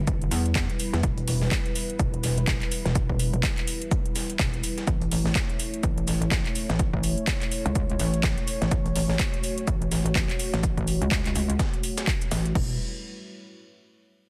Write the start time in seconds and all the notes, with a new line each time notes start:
Already playing: G1 G3 E4 B4
0.07 kick, closed hi-hat, shaker
0.22 closed hi-hat
0.31 E2, snare, open hi-hat, shaker
0.46 closed hi-hat
0.55 kick, snare, clap, closed hi-hat, shaker
0.70 closed hi-hat
0.79 open hi-hat, shaker
0.93 E2, snare, closed hi-hat
1.03 E1, kick, closed hi-hat, shaker
1.18 closed hi-hat
1.28 open hi-hat
1.42 snare
1.51 kick, snare, clap, closed hi-hat, shaker
1.66 closed hi-hat
1.75 open hi-hat, shaker
1.90 closed hi-hat
1.99 E1, kick, closed hi-hat, shaker
2.14 closed hi-hat
2.24 snare, open hi-hat, shaker
2.38 closed hi-hat
2.47 kick, snare, clap, closed hi-hat, shaker
2.62 clap, closed hi-hat
2.72 open hi-hat, shaker
2.85 E1, snare, closed hi-hat
2.95 kick, closed hi-hat, shaker
3.10 kick
3.19 open hi-hat, shaker
3.33 E1, closed hi-hat
3.43 kick, snare, clap, closed hi-hat, shaker
3.58 clap, closed hi-hat
3.67 open hi-hat, shaker
3.82 closed hi-hat
3.91 kick, closed hi-hat, shaker
4.06 closed hi-hat
4.16 snare, open hi-hat, shaker
4.30 closed hi-hat
4.39 E1, kick, snare, clap, closed hi-hat, shaker
4.54 closed hi-hat
4.64 open hi-hat, shaker
4.78 snare, closed hi-hat
4.87 A1 A3 C#5, kick, closed hi-hat, shaker
5.02 closed hi-hat
5.11 open hi-hat
5.26 snare
5.35 kick, snare, clap, closed hi-hat, shaker
5.50 closed hi-hat
5.60 open hi-hat, shaker
5.74 closed hi-hat
5.83 A1, kick, closed hi-hat, shaker
5.98 closed hi-hat
6.07 snare, open hi-hat, shaker
6.22 closed hi-hat
6.31 A1, kick, snare, clap, closed hi-hat, shaker
6.46 clap, closed hi-hat
6.55 open hi-hat, shaker
6.69 A1, snare, closed hi-hat
6.79 kick, closed hi-hat, shaker
6.93 kick
7.03 open hi-hat, shaker
7.18 closed hi-hat
7.27 kick, snare, clap, closed hi-hat, shaker
7.42 clap, closed hi-hat
7.52 open hi-hat, shaker
7.66 C#2, closed hi-hat
7.75 kick, closed hi-hat, shaker
7.90 closed hi-hat
7.99 A1, snare, open hi-hat, shaker
8.14 closed hi-hat
8.23 kick, snare, clap, closed hi-hat, shaker
8.38 closed hi-hat
8.48 open hi-hat, shaker
8.62 A1, snare, closed hi-hat
8.71 A1 F#4, kick, closed hi-hat, shaker
8.86 closed hi-hat
8.96 open hi-hat
9.10 snare
9.20 kick, snare, clap, closed hi-hat, shaker
9.34 closed hi-hat
9.44 open hi-hat, shaker
9.58 closed hi-hat
9.67 A1, kick, closed hi-hat, shaker
9.82 closed hi-hat
9.92 snare, open hi-hat, shaker
10.06 closed hi-hat
10.15 A1, kick, snare, clap, closed hi-hat, shaker
10.30 clap, closed hi-hat
10.39 open hi-hat, shaker
10.54 A1, snare, closed hi-hat
10.63 kick, closed hi-hat, shaker
10.77 kick, closed hi-hat
10.88 open hi-hat, shaker
11.02 C#2, closed hi-hat
11.11 kick, snare, clap, closed hi-hat, shaker
11.26 clap, closed hi-hat
11.35 C#2, open hi-hat, shaker
11.50 closed hi-hat
11.59 kick, snare, closed hi-hat, shaker
11.74 closed hi-hat
11.83 open hi-hat, shaker
11.98 snare, closed hi-hat, shaker
12.07 kick, clap, closed hi-hat
12.22 closed hi-hat, shaker
12.31 A1, snare, open hi-hat, shaker
12.46 closed hi-hat
12.55 E1 G3 E4 B4, kick, crash